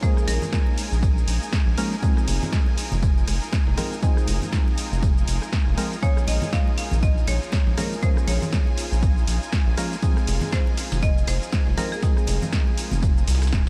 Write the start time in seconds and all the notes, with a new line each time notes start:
Already playing: D#4 F4 G#4 A#4 G#5
0.02 F3 G#3 A#3 C#4 G#4 C5, kick, ride, tambourine, cabasa
0.17 cross-stick, cabasa
0.28 A#1 A#4, open hi-hat, ride, tambourine, muted conga, cabasa
0.42 low conga, cabasa
0.53 kick, snare, ride, tambourine, high conga, cabasa
0.67 muted conga
0.78 open hi-hat, ride, tambourine, cabasa
0.92 A#1, cabasa
1.03 kick, ride, tambourine, cabasa
1.18 cabasa
1.28 A#1, open hi-hat, ride, tambourine, cabasa
1.43 cabasa
1.53 kick, snare, ride, tambourine, cabasa
1.67 A#1, snare
1.78 F3 G#3 A#3 C#4 A#4, cross-stick, open hi-hat, ride, tambourine, cabasa
1.92 snare, cabasa
2.03 F3 G#3 C4 D#4 F4 G#4, kick, ride, tambourine, cabasa
2.17 cross-stick, snare, cabasa
2.27 F1, open hi-hat, ride, tambourine, muted conga, cabasa
2.42 snare, low conga, cabasa
2.53 kick, snare, ride, tambourine, high conga, cabasa
2.66 snare, muted conga
2.78 snare, open hi-hat, ride, tambourine, cabasa
2.92 F1, low conga, cabasa
3.02 kick, ride, tambourine, cabasa
3.18 cabasa
3.27 F1, cross-stick, open hi-hat, ride, tambourine, muted conga, high conga, cabasa
3.42 snare, cabasa
3.53 kick, snare, ride, tambourine, muted conga, cabasa
3.67 F1, snare, high conga
3.77 F3 G#3 C4 D#4 A#4, cross-stick, open hi-hat, ride, tambourine, low conga, cabasa
3.93 cabasa
4.03 F3 G#3 C4 D#4 G#4, kick, ride, tambourine, cabasa
4.17 cross-stick, cabasa
4.27 F1, open hi-hat, ride, tambourine, muted conga, high conga, cabasa
4.42 low conga, cabasa
4.52 kick, snare, ride, tambourine, high conga, cabasa
4.68 muted conga
4.78 open hi-hat, ride, tambourine, cabasa
4.92 F1, cabasa
5.03 kick, ride, tambourine, cabasa
5.18 cabasa
5.28 F1, open hi-hat, ride, tambourine, cabasa
5.42 cross-stick, cabasa
5.53 kick, snare, ride, tambourine, cabasa
5.67 F1, snare
5.77 F3 G#3 C4 D#4 A#4, cross-stick, open hi-hat, ride, tambourine, high conga, cabasa
5.92 snare, cabasa
6.02 F3 G#3 A#3 C#4 G#4 C#5 G#5, kick, ride, tambourine, cabasa
6.17 cross-stick, snare, cabasa
6.27 A#1 D#5, open hi-hat, ride, tambourine, muted conga, cabasa
6.42 snare, low conga, cabasa
6.53 F5, kick, snare, ride, tambourine, high conga, cabasa
6.67 snare, muted conga
6.78 F5, snare, open hi-hat, ride, tambourine, cabasa
6.91 A#1, low conga, cabasa
7.03 D#5, kick, ride, tambourine, cabasa
7.18 cabasa
7.27 A#1 C#5, cross-stick, open hi-hat, ride, tambourine, muted conga, high conga, cabasa
7.42 snare, cabasa
7.52 kick, snare, ride, tambourine, muted conga, cabasa
7.67 A#1, snare, high conga
7.78 F3 G#3 A#3 C#4 A#4, cross-stick, open hi-hat, ride, tambourine, low conga, cabasa
7.93 cabasa
8.03 F3 G#3 A#3 C#4 G#4 C5, kick, ride, tambourine, cabasa
8.17 cross-stick, cabasa
8.28 A#1 C#5, open hi-hat, ride, tambourine, muted conga, cabasa
8.42 low conga, cabasa
8.53 kick, snare, ride, tambourine, high conga, cabasa
8.67 muted conga
8.78 open hi-hat, ride, tambourine, cabasa
8.92 A#1, cabasa
9.03 kick, ride, tambourine, cabasa
9.18 cabasa
9.28 A#1, open hi-hat, ride, tambourine, cabasa
9.43 cabasa
9.53 kick, snare, ride, tambourine, cabasa
9.67 A#1, snare
9.77 F3 G#3 A#3 C#4 A#4, cross-stick, open hi-hat, ride, tambourine, cabasa
9.92 snare, cabasa
10.02 F3 G#3 C4 D#4 G#4, kick, ride, tambourine, cabasa
10.17 cross-stick, snare, cabasa
10.27 F1, open hi-hat, ride, tambourine, muted conga, cabasa
10.41 snare, low conga, cabasa
10.52 C5, kick, snare, ride, tambourine, high conga, cabasa
10.67 snare, muted conga
10.77 snare, open hi-hat, ride, tambourine, cabasa
10.92 F1, snare, tambourine, low conga, cabasa
11.02 D#5, kick, ride, tambourine, cabasa
11.18 cabasa
11.27 F1 C5, cross-stick, open hi-hat, ride, tambourine, muted conga, high conga, cabasa
11.42 snare, cabasa
11.52 kick, snare, ride, tambourine, muted conga, cabasa
11.67 F1, snare, high conga
11.77 F3 G#3 C4 D#4 A#4, cross-stick, snare, open hi-hat, ride, tambourine, low conga, cabasa
11.92 G#4, cabasa
12.02 F3 G#3 C4 D#4 G#4, kick, snare, ride, tambourine, cabasa
12.17 cross-stick, cabasa
12.27 F1, open hi-hat, ride, tambourine, muted conga, cabasa
12.42 low conga, cabasa
12.52 kick, snare, ride, tambourine, high conga, cabasa
12.67 muted conga
12.78 open hi-hat, ride, tambourine, cabasa
12.91 F1, low conga, cabasa
13.03 kick, ride, tambourine, cabasa
13.18 cabasa
13.28 C2, snare, open hi-hat, ride, tambourine, cabasa
13.35 snare, tambourine
13.42 cross-stick, snare, tambourine, cabasa
13.47 snare, tambourine
13.53 D#1, kick, snare, ride, cabasa